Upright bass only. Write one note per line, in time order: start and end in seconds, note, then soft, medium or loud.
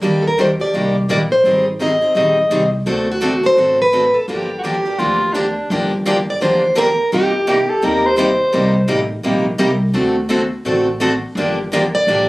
0.01 0.59 D#2 medium
0.74 1.04 C2 medium
1.08 1.39 A#1 medium
1.44 2.01 G#1 medium
2.15 2.45 A#1 medium
2.50 2.80 C2 medium
2.86 3.43 D2 medium
3.57 4.14 A1 medium
4.28 4.85 G1 medium
4.98 5.55 D2 medium
5.70 6.27 G1 medium
6.42 6.98 D2 medium
7.12 7.69 G1 medium
7.83 8.39 D#2 medium
8.54 8.82 C2 medium
8.88 9.18 A1 medium
9.24 9.54 A#1 medium
9.59 9.89 C2 medium
9.94 10.51 D2 medium
10.65 11.22 A1 medium
11.35 11.92 G1 medium
12.07 12.29 A1 medium